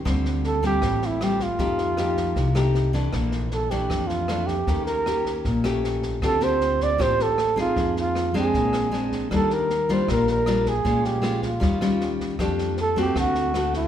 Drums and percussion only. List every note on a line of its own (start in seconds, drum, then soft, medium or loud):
0.05 kick soft
0.05 cross-stick soft
0.05 snare soft
0.25 snare soft
0.44 snare soft
0.63 kick soft
0.63 snare soft
0.82 kick soft
0.82 cross-stick medium
0.82 snare soft
1.02 snare soft
1.21 cross-stick medium
1.21 snare soft
1.40 kick soft
1.40 snare soft
1.59 kick soft
1.59 snare soft
1.78 snare soft
1.97 cross-stick soft
1.97 snare soft
2.17 kick soft
2.17 snare soft
2.36 kick medium
2.36 snare soft
2.55 cross-stick soft
2.55 snare soft
2.75 snare soft
2.94 kick soft
2.94 snare soft
3.13 kick soft
3.13 cross-stick soft
3.13 snare soft
3.32 snare soft
3.51 snare soft
3.70 kick soft
3.70 snare soft
3.90 kick soft
3.90 cross-stick medium
3.90 snare soft
4.09 snare soft
4.28 cross-stick medium
4.28 snare soft
4.48 kick soft
4.48 snare soft
4.67 kick soft
4.67 snare soft
4.86 snare soft
5.06 cross-stick soft
5.06 snare soft
5.25 kick soft
5.25 snare soft
5.45 kick soft
5.45 snare soft
5.64 cross-stick medium
5.64 snare soft
5.84 snare soft
6.03 kick soft
6.03 snare soft
6.22 kick medium
6.22 cross-stick soft
6.22 snare soft
6.41 snare soft
6.61 snare soft
6.80 kick soft
6.80 snare soft
6.99 kick medium
6.99 cross-stick medium
6.99 snare soft
7.19 snare soft
7.38 cross-stick medium
7.38 snare soft
7.57 kick soft
7.57 snare soft
7.77 kick soft
7.77 snare soft
7.96 snare soft
8.15 cross-stick soft
8.15 snare soft
8.35 kick soft
8.35 snare soft
8.54 kick medium
8.54 snare soft
8.73 cross-stick medium
8.73 snare soft
8.93 snare soft
9.12 kick soft
9.12 snare soft
9.31 kick medium
9.31 cross-stick soft
9.31 snare soft
9.50 snare soft
9.70 snare soft
9.89 kick soft
9.89 snare soft
10.08 kick medium
10.08 cross-stick medium
10.08 snare soft
10.27 snare soft
10.46 cross-stick medium
10.46 snare soft
10.66 kick soft
10.66 snare soft
10.85 kick soft
10.85 snare soft
11.05 snare soft
11.23 cross-stick soft
11.23 snare soft
11.42 kick soft
11.42 snare soft
11.62 kick soft
11.62 snare soft
11.81 cross-stick soft
11.81 snare soft
12.01 snare soft
12.20 kick soft
12.20 snare soft
12.39 kick soft
12.39 cross-stick soft
12.39 snare soft
12.58 snare soft
12.77 snare soft
12.96 kick soft
12.96 snare soft
13.16 kick medium
13.16 cross-stick medium
13.16 snare soft
13.35 snare soft
13.54 cross-stick medium
13.54 snare soft
13.74 kick soft
13.74 snare soft